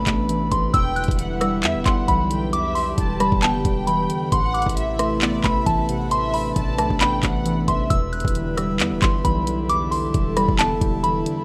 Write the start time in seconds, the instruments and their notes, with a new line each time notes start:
Already playing: synth keys A2 C3 E3 A3 B3, analog synth pad C3 A3 D4 B4, synth bell B5
0.07 808-style bass A1, synth keys A3, kick, clap, closed hi-hat
0.29 synth keys E3, closed hi-hat
0.52 808-style bass A1, synth keys C3, synth bell C6, kick, closed hi-hat
0.74 808-style bass E1, synth keys E2, analog synth pad D3 G3 E4, violin section G5, synth bell E6, kick, closed hi-hat
0.96 synth bell F#6, closed hi-hat
1.04 closed hi-hat
1.08 808-style bass E1, kick, closed hi-hat
1.19 synth keys E3, violin section F#5, closed hi-hat
1.41 synth keys G3, synth bell E6, cross-stick, closed hi-hat
1.63 808-style bass E2, synth keys B3, violin section E5, clap, closed hi-hat
1.75 808-style bass E1
1.86 808-style bass G1, synth keys G3, violin section F#5, synth bell C6, kick, clap, closed hi-hat
2.08 808-style bass B1, synth keys E3, synth bell B5, kick, closed hi-hat
2.31 synth keys D3, violin section G5, closed hi-hat
2.53 synth keys E2, analog synth pad G4, violin section E5, synth bell D6, closed hi-hat
2.75 synth bell C6, open hi-hat
2.98 808-style bass E1, synth keys E3, violin section A5, kick, closed hi-hat
3.20 synth keys G3, synth bell B5, cross-stick, closed hi-hat
3.32 808-style bass E1, kick
3.42 synth keys B3, violin section G5, synth bell A5, clap, closed hi-hat
3.55 808-style bass F#1
3.65 808-style bass E1, synth keys G3, violin section G5, kick, closed hi-hat
3.87 synth keys E3, synth bell B5, closed hi-hat
4.10 synth keys D3, closed hi-hat
4.32 808-style bass A1, synth keys A2, analog synth pad C3 A3 E4 B4, violin section F#5, synth bell C6, kick, closed hi-hat
4.54 synth bell D6, closed hi-hat
4.62 closed hi-hat
4.66 808-style bass A1, kick, closed hi-hat
4.77 synth keys E3, violin section E5, closed hi-hat
4.99 synth keys A3, synth bell C6, cross-stick, closed hi-hat
5.22 synth keys B3, violin section D5, clap, closed hi-hat
5.44 808-style bass A1, synth keys A3, violin section E5, synth bell B5, kick, clap, closed hi-hat
5.66 808-style bass A1, synth keys E3, synth bell A5, kick, closed hi-hat
5.89 synth keys C3, violin section F#5, closed hi-hat
6.11 synth keys A2, analog synth pad D4, violin section E5, synth bell C6, closed hi-hat
6.34 synth bell B5, open hi-hat
6.56 808-style bass A1, synth keys E3, violin section A5, kick, closed hi-hat
6.78 808-style bass B1, synth keys A3, synth bell A5, cross-stick, closed hi-hat
6.90 808-style bass A1, kick
7.01 synth keys B3, violin section G5, synth bell B5, clap, closed hi-hat
7.23 808-style bass A1, synth keys A3, violin section F#5, kick, clap, closed hi-hat
7.45 synth keys E3, closed hi-hat
7.68 808-style bass A1, synth keys C3, violin section E5, synth bell C6, kick, closed hi-hat
7.90 808-style bass E1, synth keys E2, analog synth pad D3 G3 E4 B4, synth bell E6, kick, closed hi-hat
8.13 synth bell F#6, closed hi-hat
8.20 closed hi-hat
8.25 808-style bass E1, kick, closed hi-hat
8.35 synth keys E3, closed hi-hat
8.57 synth keys G3, synth bell E6, cross-stick, closed hi-hat
8.80 808-style bass E2, synth keys B3, clap, closed hi-hat
8.92 808-style bass E1
9.02 808-style bass G1, synth keys G3, synth bell C6, kick, clap, closed hi-hat
9.25 808-style bass B1, synth keys E3, synth bell B5, kick, closed hi-hat
9.47 synth keys D3, closed hi-hat
9.69 synth keys E2, analog synth pad A4, synth bell D6, closed hi-hat
9.91 synth bell C6, open hi-hat
10.14 808-style bass E1, synth keys E3, kick, closed hi-hat
10.37 synth keys G3, synth bell B5, cross-stick, closed hi-hat
10.48 808-style bass E1, kick
10.59 synth keys B3, synth bell A5, clap, closed hi-hat
10.71 808-style bass F#1
10.81 808-style bass E1, synth keys G3, kick, closed hi-hat
11.03 synth keys E3, synth bell B5, closed hi-hat
11.26 synth keys D3, closed hi-hat